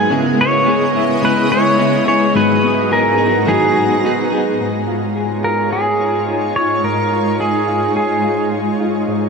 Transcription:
Already playing: clean electric guitar G#2 F#3 B3 D#4 G#4, ambient pad G#3 B3
0.10 clean electric guitar C#3 G#3 B3 E4 G#4, ambient pad C#3 E4 D#5
0.37 clean electric guitar B3 E4 G#4
0.41 pedal steel guitar C#5
0.65 clean electric guitar G#3 B3 E4 G#4
0.69 clean electric guitar G#4
0.93 clean electric guitar E4 G#4
0.97 clean electric guitar B3
1.22 clean electric guitar C#3 G#3 B3 E4 G#4, pedal steel guitar B4
1.49 clean electric guitar E4 G#4, pedal steel guitar C#5
1.53 clean electric guitar B3
1.77 clean electric guitar G#3 B3 E4
1.82 clean electric guitar G#4
2.06 clean electric guitar E4 G#4, pedal steel guitar C#5
2.10 clean electric guitar B3
2.34 clean electric guitar G#2 D#3 F#3 B3 D#4 G#4, ambient pad G#2 B3 F#4 A#5, pedal steel guitar B4
2.61 clean electric guitar B3 D#4 G#4
2.65 clean electric guitar F#3
2.89 clean electric guitar F#3 B3 D#4 G#4, pedal steel guitar A#4
2.94 clean electric guitar G#4
3.18 clean electric guitar B3 D#4 G#4
3.22 clean electric guitar F#3
3.46 clean electric guitar G#2 D#3 F#3 B3 D#4 G#4, pedal steel guitar G#4
3.74 clean electric guitar B3 D#4 G#4
3.79 clean electric guitar F#3
4.02 clean electric guitar F#3 B3 D#4
4.06 clean electric guitar G#4
4.30 clean electric guitar B3 D#4 G#4
4.34 clean electric guitar F#3
4.59 ambient pad G#2 G#3 D#4 F4 C#5, clean electric guitar G#2
4.87 clean electric guitar F4
5.16 clean electric guitar G#4
5.44 clean electric guitar F4, pedal steel guitar A#4
5.72 clean electric guitar G#4, pedal steel guitar G#4
6.00 clean electric guitar F4
6.28 clean electric guitar G#4
6.55 clean electric guitar F4, pedal steel guitar C#5
6.83 clean electric guitar G#2, pedal steel guitar A#4
7.11 clean electric guitar F4
7.40 clean electric guitar G#4, pedal steel guitar G#4
7.68 clean electric guitar F4
7.96 clean electric guitar G#4, pedal steel guitar G#4
8.24 clean electric guitar F4
8.52 clean electric guitar G#4
8.80 clean electric guitar F4
9.07 clean electric guitar G#2, ambient pad C#4 F#4 B4

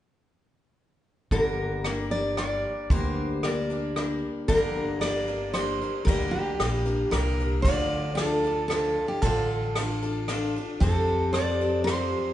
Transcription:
1.31 upright bass G1, steel-string acoustic guitar G2 D3 G3 A#3 D4 A#4, kick
1.84 steel-string acoustic guitar G3 A#3 D4 A#4, cross-stick
2.11 steel-string acoustic guitar G3 A#3 D4 A#4 D5
2.37 steel-string acoustic guitar G3 A#3 D4 A#4 D5, cross-stick
2.90 upright bass D2, steel-string acoustic guitar G2 D3 G3 A#3 D4 A#4 C5, kick
3.43 steel-string acoustic guitar G3 A#3 D4 A#4 D5, cross-stick
3.70 steel-string acoustic guitar G3 A#3 D4 A#4
3.96 steel-string acoustic guitar G3 A#3 D4 A#4, cross-stick
4.48 upright bass G1, steel-string acoustic guitar G2 D3 G3 A#3 D4 A#4, kick, ride
5.01 steel-string acoustic guitar G3 A#3 D4 A#4 D5, cross-stick, ride
5.28 steel-string acoustic guitar G3 A#3 D4 A#4
5.53 steel-string acoustic guitar G3 A#3 D4 A#4 C5, cross-stick, ride
5.82 steel-string acoustic guitar G3 A#3 D4 A#4
6.05 upright bass D2, steel-string acoustic guitar G2 D3 G3 A#3 D4 A#4, kick, ride
6.31 steel-string acoustic guitar G4
6.60 upright bass A#1, steel-string acoustic guitar G3 A#3 D4 A#4, cross-stick, ride
6.86 steel-string acoustic guitar G3 A#3 D4 A#4
7.11 upright bass C2, steel-string acoustic guitar G3 A#3 D4 A#4, cross-stick, ride
7.15 steel-string acoustic guitar A#4
7.40 steel-string acoustic guitar G3 A#3 D4 A#4
7.62 upright bass D2, steel-string acoustic guitar D5, kick, ride
7.66 steel-string acoustic guitar D3 F3 D4 F4 A4
8.15 steel-string acoustic guitar F3 A4, cross-stick, ride
8.20 steel-string acoustic guitar D4 F4 A4
8.44 steel-string acoustic guitar D4 F4 A4
8.68 steel-string acoustic guitar F3 A4, cross-stick, ride
8.72 steel-string acoustic guitar D4 F4 A4
9.08 steel-string acoustic guitar G4
9.22 upright bass A1, steel-string acoustic guitar D3 F3 D4 F4 A4, kick, ride
9.76 steel-string acoustic guitar F3 D4 F4 A4, cross-stick, ride
10.03 steel-string acoustic guitar D4 F4 A4
10.28 steel-string acoustic guitar F3 D4 F4 A4, cross-stick, ride
10.56 steel-string acoustic guitar D4 F4 A4
10.80 upright bass F2, steel-string acoustic guitar F3 C4 G4 A4, kick, ride
11.33 steel-string acoustic guitar F3 C4 G4 D5, cross-stick, ride
11.37 steel-string acoustic guitar A4
11.61 steel-string acoustic guitar C4 G4 A4
11.84 steel-string acoustic guitar F3 C5, cross-stick, ride
11.88 steel-string acoustic guitar C4 G4 A4

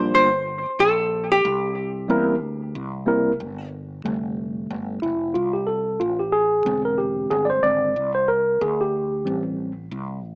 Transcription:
Already playing: fretless electric bass A#1, tine electric piano G3 A#3 D4 F4 C5, hollow-body jazz guitar C5
0.14 fretless electric bass G1, hollow-body jazz guitar C5
0.66 muted fretless electric bass stroke
0.79 fretless electric bass A#1, hollow-body jazz guitar A4
1.32 hollow-body jazz guitar G4
1.45 fretless electric bass C2
2.08 fretless electric bass E2, tine electric piano G3 A#3 C4 E4 A#4
2.43 fretless electric bass D2
2.75 fretless electric bass C2
3.06 tine electric piano G3 A#3 C4 E4 A#4
3.40 fretless electric bass G1
4.04 fretless electric bass F1, tine electric piano D3 G3 A3
4.70 fretless electric bass G1
5.02 fretless electric bass F1, tine electric piano E4
5.34 fretless electric bass C2, tine electric piano F4
5.53 tine electric piano G4
5.67 tine electric piano A4
6.00 fretless electric bass A1, tine electric piano F4
6.19 tine electric piano G4
6.32 tine electric piano G#4
6.65 fretless electric bass E1, tine electric piano D3 G#3 C4
6.85 tine electric piano A#4
6.98 tine electric piano G4
7.30 fretless electric bass G1, tine electric piano G#4
7.45 tine electric piano D5
7.50 tine electric piano C5
7.62 fretless electric bass G#1, tine electric piano D3 G#3 C4 D5
7.96 fretless electric bass C2
8.15 tine electric piano C5
8.28 tine electric piano A#4
8.61 fretless electric bass D2, tine electric piano G#4
8.81 tine electric piano G4
9.25 fretless electric bass A1, tine electric piano E3 G3 C4
9.91 fretless electric bass C2
10.24 fretless electric bass A1

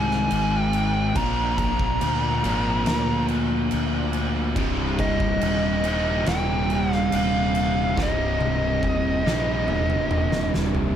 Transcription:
Already playing: fingered electric bass C2, distorted electric guitar G#2 D#3 G#3 C4 D#4 G#4, lead electric guitar G#5
0.11 snare
0.31 fingered electric bass G#1, crash
0.59 lead electric guitar G5
0.73 crash
1.16 fingered electric bass A#1, distorted electric guitar A#2 F3 A#3 D4 F4 A#4, lead electric guitar A#5, kick, crash
1.58 lead electric guitar A#5, kick, crash
1.79 kick
2.01 fingered electric bass D2, crash
2.44 fingered electric bass G#1, distorted electric guitar A#2 F3 A#3 D4 F4 A#4, crash
2.86 fingered electric bass D2, snare, crash
3.28 crash
3.71 fingered electric bass D2, crash
4.13 crash
4.56 fingered electric bass C1, distorted electric guitar C2 G2 C3 G3 D#4, kick, crash
4.99 lead electric guitar D#5, kick, crash
5.20 kick
5.41 fingered electric bass D#1, crash
5.84 distorted electric guitar C2 G2 C3 G3 D#4, crash
6.26 fingered electric bass D#1, lead electric guitar G5, snare, crash
6.70 crash
6.92 lead electric guitar F5, snare
7.12 fingered electric bass D#1, crash
7.16 lead electric guitar F5
7.55 crash
7.95 fingered electric bass C1, distorted electric guitar C2 G2 C3 G3 D#4, kick, snare
8.03 lead electric guitar D#5
8.40 high tom
8.83 fingered electric bass D#1, kick
9.25 fingered electric bass A#1, distorted electric guitar C2 G2 C3 G3 D#4, snare
9.68 fingered electric bass D#1, mid tom
9.90 mid tom
10.11 mid tom
10.32 snare
10.54 fingered electric bass D#1, snare
10.75 floor tom

